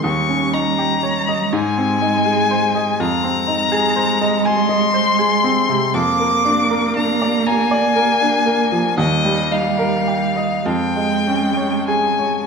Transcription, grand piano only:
\new Staff \with { instrumentName = "Grand piano" } { \time 6/8 \key aes \major \tempo 4. = 40 ees,16 des'16 ees'16 g'16 des''16 ees''16 aes,16 c'16 ees'16 aes'16 c''16 ees''16 | \key bes \dorian f,16 c'16 ees'16 aes'16 c''16 ees''16 aes''16 ees''16 c''16 aes'16 c'16 c16 | f,16 bes16 d'16 bes'16 d'16 d''16 bes''16 d''16 bes'16 d'16 bes16 f16 | ees,16 g16 ees'16 bes'16 g'16 ees''16 f,16 aes16 des'16 des''16 aes'16 des''16 | }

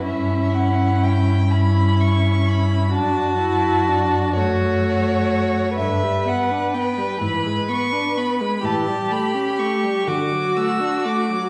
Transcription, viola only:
\new Staff \with { instrumentName = "Viola" } { \time 6/8 \key d \major \tempo 4. = 42 cis'4. cis'4. | d'8 e'8 d'8 a4. | d16 g16 b16 d'16 b16 g16 e16 gis16 b16 d'16 b16 gis16 | e16 g16 a16 cis'16 a16 g16 d16 fis16 a16 d'16 a16 fis16 | }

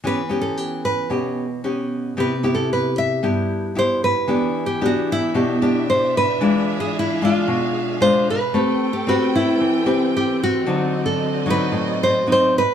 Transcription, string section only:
\new Staff \with { instrumentName = "String section" } { \time 4/4 \key e \minor \tempo 4 = 113 << { r1 | r1 | <d' g' e''>1 | <gis' f''>1 |
<a' b' g''>1 | <fis' d'' ees''>1 | } \\ { r1 | r1 | r1 | r1 |
c'1~ | c'1 | } >> }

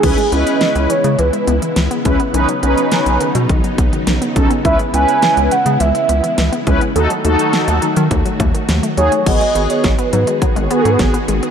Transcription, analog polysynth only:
\new Staff \with { instrumentName = "Analog polysynth" } { \time 4/4 \key cis \minor \tempo 4 = 104 <cis' e' b'>16 r16 <cis' e' b'>4 r2 <cis' e' b'>16 r16 | <cis' dis' b'>16 r16 <cis' dis' b'>4 r2 <cis' dis' a'>16 r16 | <cis' e' b'>16 r16 <cis' e' b'>4 r2 <cis' e' b'>16 r16 | <dis' fis' a'>16 r16 <dis' fis' a'>4 r2 <dis' fis' gis'>16 r16 |
<b fis' gis'>4 r4. <b fis' gis'>4 r8 | }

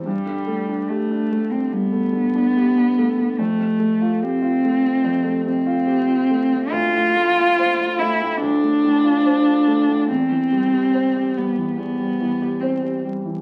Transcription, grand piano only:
\new Staff \with { instrumentName = "Grand piano" } { \time 4/4 \key c \major \tempo 4 = 72 g,16 d16 a16 d'16 g'16 d'16 a16 d16 g,16 a16 d16 d'16 g'16 d'16 a16 d16 | f,16 c16 a16 f'16 g'16 f'16 a16 c16 f,16 a16 c16 f'16 g'16 f'16 a16 c16 | d,16 a,16 a16 f'16 c''16 f'16 a16 a,16 d,16 a16 a,16 f'16 c''16 f'16 a16 a,16 | e,16 e16 g16 g'16 c''16 g'16 g16 e16 e,16 g16 e16 g'16 c''16 g'16 g16 e16 | }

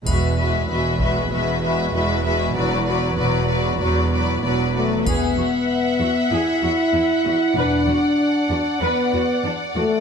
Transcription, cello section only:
\new Staff \with { instrumentName = "Cello section" } { \clef bass \time 4/4 \key e \major \tempo 4 = 96 e,4 e,4 e,4 e,4 | e,4 e,4 e,4 e,4 | e,8 e,8 r8 e,8 e,8 e,8 e,8 e,8 | e,8 e,8 r8 e,8 e,8 e,8 e,8 e,8 | }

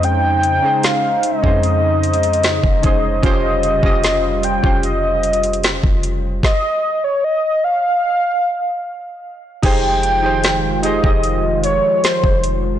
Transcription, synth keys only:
\new Staff \with { instrumentName = "Synth keys" } { \time 4/4 \key f \minor \tempo 4 = 75 <des' ees' aes' c''>8 r16 <des' ees' aes' c''>8. r16 <des' ees' aes' c''>4~ <des' ees' aes' c''>16 r8 <des' ees' aes' c''>16 r16 | <des' f' g' c''>8 r16 <des' f' g' ees''>8. r16 <des' f' g' c''>4~ <des' f' g' c''>16 r4 | r1 | <ees' g' aes' c''>8 r16 <ees' g' aes' c''>8 r16 <ees' g' aes' c''>16 <ees' g' aes' ees''>4~ <ees' g' aes' ees''>16 r4 | }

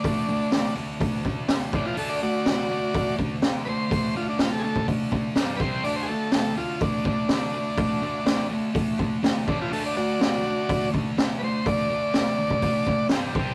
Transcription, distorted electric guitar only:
\new Staff \with { instrumentName = "Distorted electric guitar" } { \clef bass \time 4/4 \key d \mixolydian \tempo 4 = 124 <d a>8 <d a>8 <d a>8 <d a>8 <d a>8 <d a>8 <d a>8 <a, e a>8 | <d a d'>8 <d a>8 <d a>8 <d a>8 <d a>8 <d a>8 <d a>8 <d a>8 | <d a>8 <d a>8 <d a>8 <d a>8 <d a>8 <d a>8 <g, d g>8 <c g c'>8 | <d a d'>8 <d a>8 <d a>8 <d a>8 <d a>8 <d a>8 <d a>8 <d a>8 |
<d a>8 <d a>8 <d a>8 <d a>8 <d a>8 <d a>8 <d a>8 <a, e a>8 | <d a d'>8 <d a>8 <d a>8 <d a>8 <d a>8 <d a>8 <d a>8 <d a>8 | <d a>8 <d a>8 <d a>8 <d a>8 <d a>8 <d a>8 <g, d g>8 <c g c'>8 | }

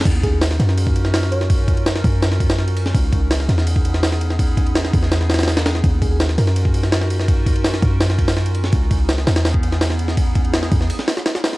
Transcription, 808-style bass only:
\new Staff \with { instrumentName = "808-style bass" } { \clef bass \time 4/4 \key ees \phrygian \tempo 4 = 166 ees,4. ges,2~ ges,8~ | ges,4. ges,2~ ges,8 | des,4. fes,2~ fes,8~ | fes,4. fes,2~ fes,8 |
ees,4. ges,2~ ges,8~ | ges,4. ges,2~ ges,8 | des,4. fes,2~ fes,8~ | fes,4. fes,8 r2 | }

